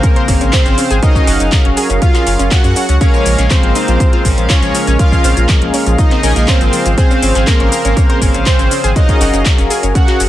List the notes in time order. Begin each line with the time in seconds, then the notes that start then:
Already playing: C#3 F3 A#3 C4 G#4 A#4 C5 F5
0.03 C#4, kick, closed hi-hat, shaker
0.16 C5, closed hi-hat
0.28 G#1 C4 C#4 G#4 C5 F5, kick, open hi-hat, shaker
0.41 G#1 C#4, closed hi-hat, shaker
0.53 C4 C5, kick, clap, closed hi-hat, shaker
0.66 G#1 C#4, closed hi-hat, shaker
0.78 C#4, open hi-hat, shaker
0.91 G#1 G#4, closed hi-hat, shaker
1.03 F#3 C#4 D#4 F#4 G#4 A#4 D#5 F5, kick, closed hi-hat, shaker
1.15 C#4, kick, shaker
1.27 F#1 F#4, open hi-hat, shaker
1.40 F#1 C#4, closed hi-hat, shaker
1.52 C#4, kick, clap, closed hi-hat, shaker
1.65 F#1 C#4, closed hi-hat
1.77 G#4, open hi-hat, shaker
1.90 F#1 C#4, closed hi-hat, shaker
2.02 C#4 F4 F5, kick, closed hi-hat, shaker
2.14 F4, clap, closed hi-hat, shaker
2.27 F#1 C#4, open hi-hat, shaker
2.39 F#1 C#4, closed hi-hat, shaker
2.51 C#4 F#4 F#5, kick, clap, closed hi-hat, shaker
2.64 F#2 C#4, closed hi-hat, shaker
2.76 C#4, open hi-hat, shaker
2.89 C#2 C#4, closed hi-hat, shaker
3.01 C#3 G#3 A#3 C#4 G#4 A#4 C#5 F5, kick, closed hi-hat, shaker
3.14 F3, shaker
3.26 A#1 F3, open hi-hat, shaker
3.38 A#1 C#4, clap, closed hi-hat, shaker
3.50 F3 C4 C5, kick, clap, closed hi-hat, shaker
3.63 G#1 F3, closed hi-hat
3.75 D#4, open hi-hat, shaker
3.88 A#1 F3, closed hi-hat, shaker
4.00 F3, kick, closed hi-hat, shaker
4.13 F4, closed hi-hat
4.25 A#1 F3 C#4 G#4 A#4 F5, kick, open hi-hat, shaker
4.38 A#1 F3, closed hi-hat, shaker
4.50 C#4 F4 C#5, kick, clap, closed hi-hat, shaker
4.63 A#1 F3, closed hi-hat, shaker
4.75 F3, open hi-hat, shaker
4.87 A#1 C#4, closed hi-hat, shaker
4.99 F3 C#4 F4 G#4 A#4 F5, kick, closed hi-hat, shaker
5.12 F3, kick, shaker
5.24 A#1 C4, open hi-hat, shaker
5.37 A#1 F3, closed hi-hat, shaker
5.49 F3, kick, clap, closed hi-hat, shaker
5.62 A#1 F3, closed hi-hat
5.74 C#4, open hi-hat, shaker
5.87 A#1 F3, closed hi-hat, shaker
5.98 F3 D#4 D#5, kick, closed hi-hat, shaker
6.11 C4, clap, closed hi-hat
6.23 A#1 F3 C#4 G#4 A#4 G#5, open hi-hat, shaker
6.36 A#1 F3 A#3 G#4 A#4 F5, closed hi-hat, shaker
6.48 C4 C#4 C5, kick, clap, closed hi-hat, shaker
6.61 G#1 F3, closed hi-hat, shaker
6.73 F3, open hi-hat, shaker
6.86 G#1 F3, closed hi-hat, shaker
6.98 C#3 F3 C4 G#4 C5 F5, kick, closed hi-hat, shaker
7.11 C#4, shaker
7.22 G#1 C#4, open hi-hat, shaker
7.35 G#1 G#4, clap, closed hi-hat, shaker
7.47 A#3 C#4 A#4, kick, clap, closed hi-hat, shaker
7.60 G#1 C#4, closed hi-hat
7.72 A#4, open hi-hat, shaker
7.85 G#1 C#4, closed hi-hat, shaker
7.97 C#4, kick, closed hi-hat, shaker
8.10 C5, closed hi-hat
8.22 G#1 C4 C#4 G#4 C5 F5, kick, open hi-hat, shaker
8.34 G#1 C#4, closed hi-hat, shaker
8.46 C4 C5, kick, clap, closed hi-hat, shaker
8.59 G#1 C#4, closed hi-hat, shaker
8.71 C#4, open hi-hat, shaker
8.84 G#1 G#4, closed hi-hat, shaker
8.96 F#3 C#4 D#4 F#4 G#4 A#4 D#5 F5, kick, closed hi-hat, shaker
9.09 C#4, kick, closed hi-hat, shaker
9.21 F#1 F#4, open hi-hat, shaker
9.34 F#1 C#4, closed hi-hat, shaker
9.46 C#4, kick, clap, closed hi-hat, shaker
9.58 F#1 C#4, closed hi-hat, shaker
9.70 G#4, open hi-hat, shaker
9.83 F#1 C#4, closed hi-hat, shaker
9.95 C#4 F#4 F#5, kick, closed hi-hat, shaker
10.08 F#4, clap, closed hi-hat
10.20 F#1 C#4, open hi-hat, shaker